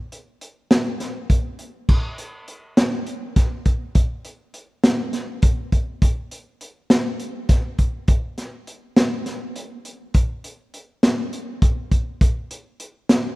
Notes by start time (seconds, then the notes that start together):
0.12 closed hi-hat
0.41 closed hi-hat
0.71 snare, closed hi-hat
1.00 snare, closed hi-hat
1.30 kick, closed hi-hat
1.59 closed hi-hat
1.89 kick, crash
2.18 closed hi-hat
2.48 closed hi-hat
2.77 snare, closed hi-hat
3.07 closed hi-hat
3.36 kick, snare, closed hi-hat
3.66 kick, closed hi-hat
3.95 kick, closed hi-hat
4.25 closed hi-hat
4.54 closed hi-hat
4.84 snare, closed hi-hat
5.13 snare, closed hi-hat
5.42 kick, closed hi-hat
5.72 kick, closed hi-hat
6.02 kick, closed hi-hat
6.31 closed hi-hat
6.61 closed hi-hat
6.90 snare, closed hi-hat
7.20 closed hi-hat
7.49 kick, snare, closed hi-hat
7.79 kick, closed hi-hat
8.08 kick, closed hi-hat
8.38 snare, closed hi-hat
8.67 closed hi-hat
8.97 snare, closed hi-hat
9.26 snare, closed hi-hat
9.56 closed hi-hat
9.85 closed hi-hat
10.14 kick, closed hi-hat
10.44 closed hi-hat
10.74 closed hi-hat
11.03 snare, closed hi-hat
11.33 closed hi-hat
11.62 kick, closed hi-hat
11.92 kick, closed hi-hat
12.21 kick, closed hi-hat
12.51 closed hi-hat
12.80 closed hi-hat
13.09 snare, closed hi-hat